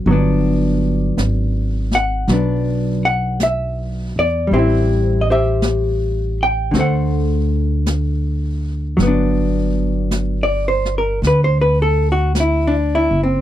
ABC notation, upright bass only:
X:1
M:4/4
L:1/8
Q:"Swing" 1/4=54
K:G
V:1 name="Upright bass" clef=bass
G,,,2 _A,,,2 B,,,3 E,, | A,,,4 D,,4 | G,,,4 D,,3 F,,, |]